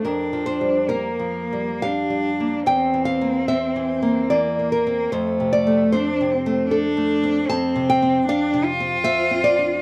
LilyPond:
<<
  \new Staff \with { instrumentName = "Cello" } { \time 3/4 \key f \major \tempo 4 = 74 d'4 bes4 d'4 | c'2 bes4 | a4 d'8 c'8 d'4 | \key d \dorian c'4 d'8 f'4. | }
  \new Staff \with { instrumentName = "Nylon-string guitar" } { \time 3/4 \key f \major << { bes'8 c''8 bes'4 f''4 | g''8 f''8 e''4 d''8 bes'8 | c''8 d''8 c''4 r4 | \key d \dorian a''8 g''8 f''4 e''8 d''8 | } \\ { \tuplet 3/2 { f,8 f8 g8 bes8 f8 g8 g'8 g8 bes8 } | \tuplet 3/2 { e,8 e8 bes8 c'8 e8 bes8 e8 bes8 c'8 } | \tuplet 3/2 { f,8 c8 a8 c'8 c8 a8 a'8 a8 c'8 } | \tuplet 3/2 { f,8 c8 c'8 d'8 c8 c'8 c''8 c'8 d'8 } | } >> }
>>